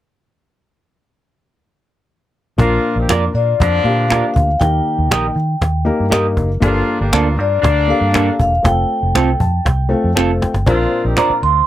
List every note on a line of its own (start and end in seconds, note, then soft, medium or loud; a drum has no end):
2.58 2.77 A#1 medium
2.58 3.30 A#2 medium
2.58 2.95 F3 loud
2.58 3.32 A#3 medium
2.58 2.94 A#3 loud
2.58 2.94 D4 loud
2.58 3.32 D4 medium
2.58 3.32 F4 medium
2.58 2.95 F4 loud
2.58 3.33 A#4 medium
2.58 cajon bass loud
2.58 cajon slap medium
2.84 cajon slap soft
2.96 3.05 A#1 medium
2.96 3.07 G3 medium
2.96 3.08 C4 medium
2.96 3.07 D#4 medium
2.96 3.07 G4 medium
2.96 cajon slap soft
3.08 3.27 F2 medium
3.08 3.30 F3 medium
3.08 3.31 A#3 medium
3.08 3.31 D4 medium
3.08 3.23 F4 medium
3.08 3.30 F4 medium
3.08 3.24 A#4 medium
3.08 3.24 D5 medium
3.08 finger snap medium
3.08 cajon slap loud
3.34 3.53 A#2 medium
3.34 3.55 F3 medium
3.34 3.55 A#3 medium
3.34 3.54 D4 medium
3.34 3.55 F4 medium
3.34 3.82 D5 medium
3.34 cajon slap soft
3.60 3.79 F2 medium
3.60 4.32 D3 loud
3.60 4.31 F3 medium
3.60 4.32 A#3 medium
3.60 4.32 D4 loud
3.60 cajon bass medium
3.60 cajon slap loud
3.84 4.21 A#2 medium
3.84 4.03 A#3 medium
3.84 4.03 D4 medium
3.84 4.04 F4 medium
3.84 4.04 G4 medium
3.84 4.32 F5 medium
3.84 cajon slap soft
4.09 4.47 A#3 medium
4.09 4.47 D4 medium
4.09 4.24 F4 medium
4.09 4.47 F4 medium
4.09 4.47 G4 medium
4.09 4.25 A#4 medium
4.09 4.25 D5 medium
4.09 finger snap medium
4.09 cajon slap loud
4.34 4.54 D2 medium
4.34 4.61 F5 medium
4.34 cajon bass medium
4.34 cajon slap soft
4.60 4.79 D#2 loud
4.60 5.33 D#3 medium
4.60 5.34 A#3 medium
4.60 5.34 D#4 medium
4.60 5.34 G4 medium
4.60 5.35 A#4 medium
4.60 6.08 G5 loud
4.60 cajon bass loud
4.60 cajon slap loud
4.86 cajon slap soft
4.98 5.10 D#2 medium
4.98 cajon slap soft
5.10 5.29 A#1 medium
5.10 5.25 G4 medium
5.10 5.25 A#4 medium
5.10 5.26 D#5 medium
5.10 finger snap medium
5.10 cajon slap loud
5.36 5.54 D#3 medium
5.36 cajon slap soft
5.61 5.89 D#2 medium
5.61 cajon bass medium
5.61 cajon slap loud
5.85 6.04 A#3 medium
5.85 6.05 D#4 medium
5.85 6.05 G4 medium
5.85 6.05 A#4 medium
5.85 cajon slap soft
6.00 6.38 G2 medium
6.10 6.48 A#3 medium
6.10 6.48 D#4 medium
6.10 6.48 G4 medium
6.10 6.26 G4 medium
6.10 6.48 A#4 medium
6.10 6.26 A#4 medium
6.10 6.26 D#5 medium
6.10 finger snap medium
6.10 cajon slap loud
6.37 6.56 F#1 medium
6.37 cajon bass medium
6.37 cajon slap soft
6.60 6.81 G1 medium
6.60 7.34 G2 medium
6.60 6.98 F3 loud
6.60 7.35 A#3 medium
6.60 6.98 A#3 loud
6.60 7.35 D4 medium
6.60 6.98 D4 loud
6.60 6.98 F4 loud
6.60 7.35 G4 medium
6.60 7.36 A4 medium
6.60 cajon bass loud
6.60 cajon slap loud
6.87 cajon slap soft
7.00 7.10 G1 medium
7.00 7.11 G3 medium
7.00 7.10 A#3 medium
7.00 7.11 D4 medium
7.00 7.11 G4 medium
7.00 cajon slap soft
7.13 7.38 D2 medium
7.13 7.34 F3 medium
7.13 7.27 A#3 medium
7.13 7.34 A#3 medium
7.13 7.27 D4 medium
7.13 7.33 D4 medium
7.13 7.34 F4 medium
7.13 7.27 A4 medium
7.13 finger snap medium
7.13 cajon slap loud
7.37 7.57 G2 medium
7.37 7.58 F3 medium
7.37 7.58 A#3 medium
7.37 7.58 D4 medium
7.37 7.58 F4 medium
7.37 7.92 D5 medium
7.37 cajon slap soft
7.62 7.91 D2 medium
7.62 8.35 D3 loud
7.62 8.35 A#3 loud
7.62 8.35 D4 loud
7.62 cajon bass medium
7.62 cajon slap loud
7.87 8.07 A#3 medium
7.87 8.07 D4 medium
7.87 8.07 G4 medium
7.87 8.07 A4 medium
7.87 8.40 F5 medium
7.87 cajon slap soft
8.01 8.29 G2 medium
8.12 8.50 A#3 medium
8.12 8.28 A#3 medium
8.12 8.50 D4 medium
8.12 8.28 D4 medium
8.12 8.50 G4 medium
8.12 8.51 A4 medium
8.12 8.29 A4 medium
8.12 finger snap medium
8.12 cajon slap loud
8.40 8.58 E1 medium
8.40 8.66 F5 medium
8.40 cajon bass medium
8.40 cajon slap soft
8.63 8.83 F1 medium
8.63 9.37 A3 medium
8.63 9.38 C4 medium
8.63 9.38 F4 medium
8.63 9.38 A4 medium
8.63 10.13 G5 medium
8.63 cajon bass loud
8.63 cajon slap loud
8.90 cajon slap soft
9.03 9.12 F1 medium
9.03 cajon slap soft
9.15 9.33 C2 medium
9.15 9.29 C4 medium
9.15 9.29 F4 medium
9.15 9.30 A4 medium
9.15 finger snap medium
9.15 cajon slap loud
9.40 9.59 F2 medium
9.40 9.64 A5 medium
9.40 cajon bass medium
9.65 9.93 C2 medium
9.65 9.89 G5 medium
9.65 cajon bass medium
9.65 cajon slap loud
9.89 10.08 A3 medium
9.89 10.08 C4 medium
9.89 10.09 F4 medium
9.89 10.09 A4 medium
9.89 10.14 F5 medium
9.89 cajon slap soft
10.04 10.13 F2 medium
10.15 10.44 F1 medium
10.15 10.52 A3 medium
10.15 10.52 C4 medium
10.15 10.30 C4 medium
10.15 10.53 F4 medium
10.15 10.30 F4 medium
10.15 10.53 A4 medium
10.15 10.31 A4 medium
10.15 10.39 A5 medium
10.15 finger snap medium
10.15 cajon slap soft
10.41 10.65 G5 medium
10.41 cajon slap medium
10.54 10.63 G1 medium
10.54 cajon slap medium
10.66 10.85 A#1 medium
10.66 11.38 A#2 medium
10.66 11.03 F3 loud
10.66 11.39 C4 medium
10.66 11.03 C4 loud
10.66 11.40 D4 medium
10.66 11.02 D4 loud
10.66 11.40 F4 medium
10.66 11.03 F4 loud
10.66 11.40 A#4 medium
10.66 cajon bass loud
10.66 cajon slap loud
10.91 cajon slap soft
11.04 11.14 A#1 medium
11.04 11.14 G3 medium
11.04 11.14 C4 medium
11.04 11.14 D#4 medium
11.04 11.14 G4 medium
11.04 cajon slap soft
11.17 11.38 F3 medium
11.17 11.38 C4 medium
11.17 11.38 D4 medium
11.17 11.31 F4 medium
11.17 11.38 F4 medium
11.17 11.31 C5 medium
11.17 11.31 D5 medium
11.17 11.29 A#5 loud
11.17 finger snap medium
11.17 cajon slap loud
11.30 muted fingered electric bass stroke soft
11.42 11.61 D2 medium
11.42 11.63 F3 medium
11.42 11.63 C4 medium
11.42 11.62 D4 medium
11.42 11.63 F4 medium
11.42 11.67 C6 medium
11.42 cajon slap soft